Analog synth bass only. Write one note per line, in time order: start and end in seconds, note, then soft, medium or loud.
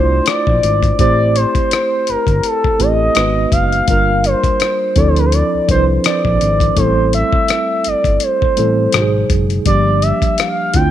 0.00 0.20 C2 medium
0.48 0.60 A#1 medium
0.64 0.93 G#1 medium
1.00 1.45 A1 medium
1.56 1.62 G1 soft
2.09 2.17 G1 soft
2.28 2.40 G1 medium
2.65 2.71 A1 soft
2.80 3.09 A1 medium
3.17 3.46 G#1 loud
3.52 3.82 F#1 medium
3.89 4.35 G1 medium
4.44 4.50 D2 soft
4.97 5.43 D2 loud
5.55 5.60 C2 soft
5.69 5.99 C2 medium
6.25 6.38 A#1 medium
6.42 6.71 G#1 medium
6.77 7.23 A1 medium
7.33 7.39 G1 soft
7.87 7.95 G1 soft
8.05 8.18 G1 medium
8.43 8.49 A1 soft
8.59 8.88 A1 medium
8.94 9.24 G#1 loud
9.30 9.60 F#1 medium
9.66 10.12 G1 medium
10.22 10.29 D2 soft
10.75 10.91 D2 loud